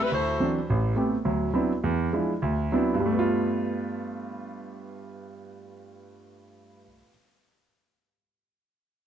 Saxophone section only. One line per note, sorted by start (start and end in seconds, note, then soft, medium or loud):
0.02 0.12 G3 medium
0.02 0.12 C4 medium
0.02 0.12 E4 medium
0.02 0.12 B4 medium
0.14 0.54 A3 medium
0.14 0.54 E4 medium
0.14 0.54 F#4 medium
0.14 0.54 C5 medium